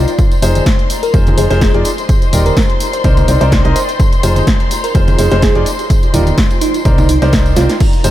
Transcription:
Already playing: D#4 F4 C5 D5 A#5 C6
0.08 closed hi-hat, tambourine
0.19 F4 C5 C6, kick, closed hi-hat, tambourine
0.31 closed hi-hat, tambourine
0.42 F1 D#4 F4 G#4 C5, open hi-hat, tambourine
0.55 closed hi-hat, tambourine, high conga
0.66 D#5, kick, snare, closed hi-hat, tambourine
0.79 closed hi-hat
0.90 open hi-hat, tambourine
1.03 A#4 G#5, closed hi-hat, tambourine
1.14 F1 D#4 F4 G#4 C5, kick, closed hi-hat, tambourine
1.27 closed hi-hat, tambourine, high conga
1.38 F1 D#4 F4 G#4 C5, open hi-hat, tambourine
1.51 F1 D#4 F4 G#4 C5, snare, closed hi-hat, tambourine
1.61 G#4, kick, snare, closed hi-hat, tambourine
1.74 F1 D#4 F4 G#4 D5, closed hi-hat
1.85 open hi-hat, tambourine
1.98 closed hi-hat, tambourine
2.09 D#4, kick, closed hi-hat, tambourine
2.22 D5, closed hi-hat, tambourine
2.33 D#1 D#4 G4 A#4 D5, open hi-hat, tambourine
2.42 A#4 G5
2.46 closed hi-hat, tambourine, high conga
2.57 kick, snare, closed hi-hat, tambourine
2.70 closed hi-hat
2.80 open hi-hat, tambourine
2.93 C5, closed hi-hat, tambourine
3.04 C2 D#4 A#4 C5 D5, kick, closed hi-hat, tambourine
3.17 closed hi-hat, tambourine, high conga
3.28 C2 D#4 A#4 C5 D5, open hi-hat, tambourine
3.34 A#5
3.41 C2 D#4 A#4 C5 D5, closed hi-hat, tambourine
3.52 kick, snare, closed hi-hat, tambourine
3.65 C2 D#4 A#4 C5 D#5, closed hi-hat
3.76 C5, open hi-hat, tambourine
3.89 closed hi-hat, tambourine
4.00 F4, kick, closed hi-hat, tambourine
4.13 closed hi-hat, tambourine
4.23 F1 D#4 F4 G#4 C5, open hi-hat, tambourine
4.36 closed hi-hat, tambourine, high conga
4.47 kick, snare, closed hi-hat, tambourine
4.60 D#5, closed hi-hat
4.71 open hi-hat, tambourine
4.84 A#4 G#5, closed hi-hat, tambourine
4.95 F1 D#4 F4 G#4 C5, kick, closed hi-hat, tambourine
5.08 closed hi-hat, tambourine, high conga
5.19 F1 D#4 F4 G#4 C5, open hi-hat, tambourine
5.31 F1 D#4 F4 G#4 C5, snare, closed hi-hat, tambourine
5.42 G#4, kick, snare, closed hi-hat, tambourine
5.55 F1 D#4 F4 G#4 D5, closed hi-hat
5.66 open hi-hat, tambourine
5.79 closed hi-hat, tambourine
5.90 D#4, kick, closed hi-hat, tambourine
6.03 closed hi-hat, tambourine
6.14 D#1 D#4 F4 G4 A#4 D5, open hi-hat, tambourine, high conga
6.23 D5 G5
6.27 closed hi-hat, tambourine, high conga
6.38 kick, snare, closed hi-hat, tambourine
6.50 closed hi-hat, tambourine
6.61 D#4, open hi-hat, tambourine
6.74 closed hi-hat, tambourine
6.85 C2 D#4 A#4 C5 D5, kick, closed hi-hat, tambourine
6.98 D#4, closed hi-hat, tambourine, high conga
7.09 D#4, open hi-hat, tambourine
7.15 A#5
7.22 C2 D#4 A#4 C5 D5, snare, closed hi-hat, tambourine
7.33 kick, snare, closed hi-hat, tambourine
7.46 closed hi-hat, tambourine
7.56 C2 D#4 F4 A#4 C5 D5, snare, open hi-hat, tambourine
7.70 snare, closed hi-hat, tambourine
7.80 F4 A#4 A#5, kick, closed hi-hat, tambourine, crash
7.93 closed hi-hat, tambourine
8.04 F1 D#4 F4 G#4 C5, open hi-hat, tambourine

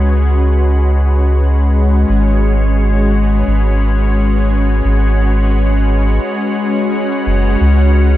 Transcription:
Already playing: C#2 G#3 C#4 F#4 B4
2.09 G#1
2.14 C#4
2.58 F#4
2.93 B4
3.47 G#1
4.84 G#1
7.26 F#1
7.61 C#2

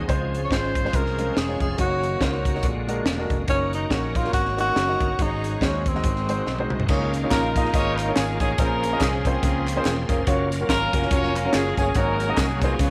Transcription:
Already playing: G#4 C5
0.07 C#2 C#3 F3 G#3 C4 C#4 F4 G#4 C5, kick, closed hi-hat
0.35 closed hi-hat
0.44 C#5
0.51 G#1 G#3 C#4 F4 C5, kick, snare, closed hi-hat
0.75 kick, closed hi-hat
0.84 G#3 C#4 F4 C5, snare
0.93 C2 A#4, kick, closed hi-hat
1.06 snare
1.18 G#3 C#4 F4 A#4, closed hi-hat
1.37 E1 G#4, snare, closed hi-hat
1.48 G#3 C#4 F4 C#5
1.60 F1 G#4, kick, closed hi-hat
1.77 F#1 D#3 A#3 D#4 F#4 A#4 C#5, kick, closed hi-hat
2.03 closed hi-hat
2.21 C#2 A#3 D#4 F#4 C5, kick, snare, closed hi-hat
2.45 kick, closed hi-hat
2.54 A#3 D#4 F#4 C#5, snare
2.63 A#1 A#2 D3 G#3 G#4 D5, kick, closed hi-hat
2.88 G#3 D4 F#4 A#4, closed hi-hat
3.05 E1, snare, closed hi-hat
3.18 G#3 D4 F#4 A#4
3.30 F1, kick, closed hi-hat
3.47 F#1 D#3 A#3 C#4 D#4 F#4 C#5 D#5, kick, closed hi-hat
3.73 D#4, closed hi-hat
3.90 A#1 A#3 C#4 D#4 F#4 C#5, kick, snare, closed hi-hat
4.15 F4, kick, closed hi-hat
4.25 A#3 D#4 F#4 C#5, snare
4.33 G#1 F#4, kick, closed hi-hat
4.45 snare
4.57 A#3 D#4 F#4 C#5, closed hi-hat
4.76 F#1, snare, closed hi-hat
4.88 A#3 D#4 F#4 D#5
5.00 G1, kick, closed hi-hat
5.18 G#1 G#2 G#3 D#4 F#4 G#4 C#5 D#5, kick, closed hi-hat
5.44 closed hi-hat
5.61 D#2 G#3 C#4 D#4 F#4 C5, kick, snare, closed hi-hat
5.86 C4, kick, closed hi-hat
5.95 G#3 D#4 F#4 D#5, snare
6.04 G#1 G#2 D#3 C4 G#4 C5 D#5, kick, closed hi-hat
6.16 snare
6.28 G#3 D#4 F#4 C5, closed hi-hat
6.46 B1, snare
6.59 G#3 D#4 F#4 C5, high tom
6.70 C2, mid tom
6.80 floor tom
6.88 C#2 C#3 D#3 A#3 C#4 D#4 F4 G#4 C#5, kick, crash, tambourine
7.14 closed hi-hat, tambourine
7.22 A#3 D#4 F4 G#4 C#5
7.30 A#1 D#4 F4 A#4, kick, snare, clap, closed hi-hat, tambourine
7.56 A#3 D#4 F4 G#4 D#5, kick, closed hi-hat, tambourine
7.65 snare
7.73 G#1 A#3 D#4 F4 G#4 A#4 C#5 D#5, kick, closed hi-hat, tambourine
7.98 A#4, clap, closed hi-hat, tambourine
8.08 A#3 D#4 F4 G#4 C#5
8.15 G#1 G#4, snare, clap, closed hi-hat, tambourine
8.40 A1 A#3 D#4 F4 G#4 C#5, kick, closed hi-hat, tambourine
8.58 A#1 A#2 F3 A#3 C#4 F4 G#4 A#4 C5, kick, closed hi-hat, tambourine
8.83 closed hi-hat, tambourine
8.92 A#3 C#4 F4 G#4 D#5
9.00 C2 G#4, kick, snare, clap, closed hi-hat, tambourine
9.25 A#3 C4 C#4 F4 G#4 C5, kick, closed hi-hat, tambourine
9.43 C#2 A#3 C#4 F4 G#4 A#4, kick, closed hi-hat, tambourine
9.67 clap, closed hi-hat, tambourine
9.76 A#3 C#4 F4 G#4 C5
9.85 E1, snare, clap, closed hi-hat, tambourine
10.09 F1 A#3 C#4 F4 G#4 A#4, kick, closed hi-hat, tambourine
10.26 F#1 F#3 A#3 C#4 F4 F#4 C#5, kick, closed hi-hat, tambourine
10.52 closed hi-hat, tambourine
10.60 A#3 C#4 F4 F#4 A#4
10.69 G#1 C#4 F4 A#4, kick, snare, clap, closed hi-hat, tambourine
10.93 F#1 A#3 C#4 F4 F#4 A#4, kick, closed hi-hat, tambourine
11.02 snare
11.11 F1 A#3 C#4 F4 F#4 A#4 C#5, kick, closed hi-hat, tambourine
11.23 snare
11.35 A#4, clap, closed hi-hat, tambourine
11.45 A#3 C#4 F4 F#4 C#5
11.53 F#1 G#4, snare, clap, closed hi-hat, tambourine
11.77 G1 A#3 C#4 F4 F#4 G#4 C#5, kick, closed hi-hat, tambourine
11.95 G#1 G#2 F#3 A#3 C#4 D#4 F#4 G#4 A#4 C#5, kick, closed hi-hat, tambourine
12.20 closed hi-hat, tambourine
12.28 A#3 D#4 F#4 G#4 D#5
12.37 C2 G#4, kick, snare, clap, closed hi-hat, tambourine
12.62 A#3 B3 D#4 F4 F#4 G#4 C5, kick, closed hi-hat, tambourine
12.79 C#2 C#3 F3 B3 C#4 F4 G#4 C#5, kick, closed hi-hat, tambourine

